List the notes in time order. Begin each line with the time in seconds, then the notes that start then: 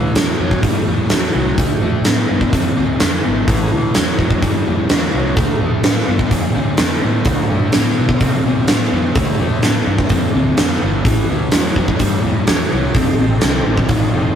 Already playing: A2 E3
0.14 E2 A2 F#3, snare, open hi-hat
0.39 F2 A2 F#3
0.51 kick
0.63 G2 A2 G3, kick, open hi-hat
0.86 F2 A2 G3
1.10 E2 A2 F#3, snare, open hi-hat
1.34 C2 A2 F#3
1.58 D2 D3 A3, kick, open hi-hat
1.81 F2 D3 A3
2.05 A2 D3 B3, snare, open hi-hat
2.30 G2 D3 B3
2.41 kick
2.52 F2 D3 C4, kick, open hi-hat
2.76 D2 D3 C4
3.00 F2 D3 B3, snare, open hi-hat
3.24 G#1 D3 B3
3.48 A1 A2 E3, kick, open hi-hat
3.72 D2 A2 E3
3.94 E2 A2 F#3, snare, open hi-hat
4.19 F2 A2 F#3, kick
4.30 kick
4.42 G2 A2 G3, kick, open hi-hat
4.66 F2 A2 G3
4.89 E2 A2 F#3, snare, open hi-hat
5.13 C2 A2 F#3
5.36 D2 D3 A3, kick, open hi-hat
5.60 F2 D3 A3
5.83 A2 D3 B3, snare, open hi-hat
6.07 G2 D3 B3
6.19 kick
6.31 F2 D3 C4, kick, open hi-hat
6.54 D2 D3 C4
6.77 F2 D3 B3, snare, open hi-hat
7.03 A2 D3 B3
7.25 D2 D3 A3, kick, open hi-hat
7.50 G2 D3 A3
7.72 A2 D3 B3, snare, open hi-hat
7.97 B2 D3 B3
8.09 kick
8.20 C3 D3 C4, kick, open hi-hat
8.45 B2 D3 C4
8.68 A2 D3 B3, snare, open hi-hat
8.92 F2 D3 B3
9.15 D2 D3 A3, kick, open hi-hat
9.39 F2 D3 A3
9.63 A2 D3 B3, snare, open hi-hat
9.86 G2 D3 B3
9.98 kick
10.09 F2 D3 C4, kick, open hi-hat
10.34 D2 D3 C4
10.57 F2 D3 B3, snare, open hi-hat
10.82 G1 D3 B3
11.05 A1 A2 E3, kick, open hi-hat
11.29 D2 A2 E3
11.52 E2 A2 F#3, snare, open hi-hat
11.76 F2 A2 F#3, kick
11.88 kick
11.99 G2 A2 G3, kick, open hi-hat
12.24 F2 A2 G3
12.47 E2 A2 F#3, snare, open hi-hat
12.72 C2 A2 F#3
12.94 F1 F2 C3 D#4 G4 A4 C5, kick, open hi-hat
13.19 A1 F2 C3
13.41 C2 F2 D3, snare, open hi-hat
13.66 A1 F2 D3
13.77 kick
13.89 A1 F2 D#3, kick, open hi-hat
14.13 F1 F2 D#3 D#4 G4 A4 C5